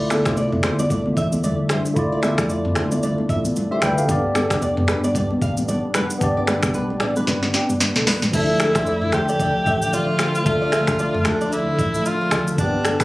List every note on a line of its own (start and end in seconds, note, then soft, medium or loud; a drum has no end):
0.00 0.16 D2 loud
0.00 4.05 D3 medium
0.00 1.91 A3 medium
0.00 4.05 A3 medium
0.00 4.05 D4 loud
0.00 1.92 E4 medium
0.00 1.93 F4 medium
0.00 1.94 D5 medium
0.00 4.05 E5 medium
0.10 0.21 A4 medium
0.10 finger snap medium
0.10 cross-stick loud
0.10 high conga medium
0.10 shaker medium
0.26 0.55 C2 medium
0.26 0.34 C5 medium
0.26 finger snap medium
0.26 kick medium
0.26 cross-stick loud
0.26 shaker medium
0.37 0.47 D5 medium
0.37 shaker medium
0.52 mid tom medium
0.52 high conga medium
0.63 1.05 D2 loud
0.63 0.74 C5 medium
0.63 finger snap medium
0.63 cross-stick loud
0.63 shaker soft
0.79 0.87 D5 medium
0.79 high conga medium
0.79 shaker medium
0.90 1.00 D5 medium
0.90 kick medium
0.90 low conga medium
0.90 shaker medium
1.06 high conga medium
1.17 1.49 E2 loud
1.17 1.27 E5 medium
1.17 kick medium
1.17 shaker medium
1.32 high conga medium
1.32 shaker medium
1.44 1.54 D5 medium
1.44 low conga medium
1.44 shaker medium
1.69 1.80 C5 medium
1.69 finger snap medium
1.69 cross-stick medium
1.69 low conga medium
1.69 shaker medium
1.85 shaker medium
1.94 2.29 D2 loud
1.94 4.04 A3 medium
1.94 4.04 E4 medium
1.94 4.05 F4 medium
1.94 kick loud
1.94 shaker medium
1.99 3.54 D5 medium
2.12 2.19 D5 medium
2.23 2.33 E5 medium
2.23 finger snap medium
2.23 cross-stick medium
2.23 high conga medium
2.23 shaker medium
2.38 2.67 F2 loud
2.38 finger snap medium
2.38 kick medium
2.38 cross-stick loud
2.38 shaker medium
2.49 2.60 D5 medium
2.49 shaker medium
2.65 mid tom medium
2.65 high conga medium
2.75 3.08 D2 loud
2.75 2.86 C5 medium
2.75 finger snap medium
2.75 cross-stick loud
2.75 shaker soft
2.91 2.99 D5 medium
2.91 high conga medium
2.91 shaker medium
3.03 3.13 D5 medium
3.03 low conga medium
3.03 shaker medium
3.18 high conga medium
3.29 3.50 A1 medium
3.29 3.39 E5 medium
3.29 kick medium
3.29 shaker medium
3.45 high conga medium
3.45 shaker medium
3.56 low conga medium
3.56 shaker medium
3.71 3.82 G4 medium
3.71 3.79 C5 medium
3.71 3.82 E5 medium
3.82 4.03 D2 medium
3.82 3.97 B4 medium
3.82 3.93 D5 medium
3.82 3.97 G5 medium
3.82 finger snap medium
3.82 cross-stick medium
3.82 low conga medium
3.82 shaker medium
3.98 4.23 A4 medium
3.98 4.23 F5 medium
3.98 shaker medium
4.06 4.41 G1 loud
4.06 8.30 G3 medium
4.06 6.16 B3 medium
4.06 8.30 B3 medium
4.06 6.17 D4 medium
4.06 8.30 D4 medium
4.06 6.18 G4 medium
4.06 kick loud
4.06 shaker medium
4.11 6.18 D5 medium
4.35 4.51 A4 medium
4.35 finger snap medium
4.35 cross-stick medium
4.35 high conga medium
4.35 shaker medium
4.50 4.80 F1 medium
4.50 4.58 B4 medium
4.50 finger snap medium
4.50 kick medium
4.50 cross-stick loud
4.50 shaker medium
4.62 4.72 D5 medium
4.62 shaker medium
4.77 mid tom medium
4.77 high conga medium
4.88 5.29 G1 medium
4.88 4.99 B4 medium
4.88 finger snap medium
4.88 cross-stick loud
4.88 shaker soft
5.04 5.11 D5 medium
5.04 high conga medium
5.04 shaker medium
5.15 5.25 D5 loud
5.15 kick medium
5.15 low conga medium
5.15 shaker medium
5.31 high conga medium
5.42 5.74 A1 loud
5.42 5.52 F5 medium
5.42 kick medium
5.42 shaker medium
5.57 high conga medium
5.57 shaker medium
5.68 5.78 D5 medium
5.68 low conga medium
5.68 shaker medium
5.94 6.05 B4 medium
5.94 finger snap medium
5.94 cross-stick medium
5.94 low conga medium
5.94 shaker medium
6.10 shaker medium
6.19 6.53 G1 loud
6.19 8.28 B3 medium
6.19 8.29 D4 medium
6.19 8.30 G4 medium
6.19 kick loud
6.19 shaker medium
6.24 8.31 D5 medium
6.37 6.44 D5 medium
6.47 6.58 B4 medium
6.47 finger snap medium
6.47 cross-stick loud
6.47 high conga medium
6.47 shaker medium
6.63 7.01 B1 medium
6.63 finger snap medium
6.63 kick medium
6.63 cross-stick loud
6.63 high conga soft
6.63 shaker medium
6.74 6.85 B4 medium
6.74 shaker medium
6.90 high conga medium
7.00 7.21 A1 loud
7.00 7.11 D5 medium
7.00 finger snap medium
7.00 cross-stick loud
7.00 shaker soft
7.16 7.24 B4 medium
7.16 high conga medium
7.16 shaker medium
7.27 7.48 G1 loud
7.27 7.38 B4 medium
7.27 snare medium
7.27 low conga medium
7.27 shaker medium
7.43 snare medium
7.43 high conga medium
7.54 7.64 G4 medium
7.54 snare medium
7.54 shaker medium
7.69 7.78 G1 medium
7.69 high conga medium
7.69 shaker medium
7.80 snare medium
7.80 low conga medium
7.80 shaker medium
7.96 8.04 B1 medium
7.96 8.03 A4 medium
7.96 snare medium
8.07 8.17 B4 medium
8.07 snare loud
8.07 open hi-hat medium
8.07 low conga medium
8.07 shaker medium
8.22 8.31 A1 medium
8.22 snare medium
8.22 shaker medium
8.31 8.76 D2 loud
8.31 12.54 D3 medium
8.31 10.41 F3 medium
8.31 12.54 F3 loud
8.31 10.41 A3 medium
8.31 12.54 A3 medium
8.31 10.42 D4 medium
8.31 9.10 E4 loud
8.31 10.44 E5 medium
8.31 10.43 E5 medium
8.31 kick loud
8.31 crash loud
8.31 shaker medium
8.36 10.43 A4 medium
8.60 8.70 A4 medium
8.60 finger snap medium
8.60 cross-stick loud
8.60 shaker medium
8.75 9.05 F2 loud
8.75 8.83 C5 medium
8.75 finger snap medium
8.75 kick medium
8.75 cross-stick loud
8.75 shaker medium
8.86 8.97 D5 medium
8.86 shaker medium
9.02 mid tom medium
9.12 9.45 D2 loud
9.12 9.95 G4 loud
9.12 9.24 C5 medium
9.12 finger snap medium
9.12 cross-stick loud
9.12 shaker soft
9.29 9.36 D5 medium
9.29 shaker medium
9.40 9.50 D5 medium
9.40 kick medium
9.40 shaker medium
9.66 9.99 A1 loud
9.66 9.77 E5 medium
9.66 kick loud
9.66 shaker medium
9.82 shaker medium
9.93 10.46 F4 loud
9.93 10.03 D5 medium
9.93 shaker medium
10.19 10.30 C5 medium
10.19 finger snap medium
10.19 cross-stick medium
10.19 shaker medium
10.35 shaker medium
10.43 10.78 D2 loud
10.43 12.53 F3 medium
10.43 12.54 A3 medium
10.43 12.54 D4 medium
10.43 13.04 D4 medium
10.43 11.28 F4 loud
10.43 12.55 E5 medium
10.43 kick loud
10.43 shaker medium
10.48 12.56 A4 medium
10.62 10.69 D5 medium
10.72 10.83 E5 medium
10.72 finger snap medium
10.72 cross-stick loud
10.72 shaker medium
10.87 11.17 D2 loud
10.87 finger snap medium
10.87 kick loud
10.87 cross-stick loud
10.87 shaker medium
10.99 11.09 D5 medium
10.99 shaker medium
11.14 mid tom medium
11.25 11.58 D2 loud
11.25 11.54 D4 medium
11.25 11.36 C5 medium
11.25 finger snap medium
11.25 cross-stick loud
11.25 shaker soft
11.41 11.49 D5 medium
11.41 shaker medium
11.52 12.07 E4 loud
11.52 11.62 D5 medium
11.52 shaker medium
11.79 11.99 A1 loud
11.79 11.89 E5 medium
11.79 kick medium
11.79 shaker medium
11.94 shaker medium
12.06 12.48 F4 medium
12.06 shaker medium
12.21 12.32 C5 medium
12.31 12.52 D2 medium
12.31 12.42 D5 medium
12.31 finger snap medium
12.31 cross-stick loud
12.31 shaker medium
12.47 shaker medium
12.56 12.91 G1 loud
12.56 13.04 G3 medium
12.56 12.64 A#3 medium
12.56 13.04 B3 medium
12.56 13.04 D4 medium
12.56 kick loud
12.56 shaker medium
12.61 13.04 B3 medium
12.61 13.04 G4 medium
12.85 12.95 A4 medium
12.85 finger snap medium
12.85 cross-stick medium
12.85 shaker medium
13.00 13.04 B1 medium
13.00 13.04 B4 medium
13.00 finger snap medium
13.00 kick loud
13.00 cross-stick loud
13.00 shaker medium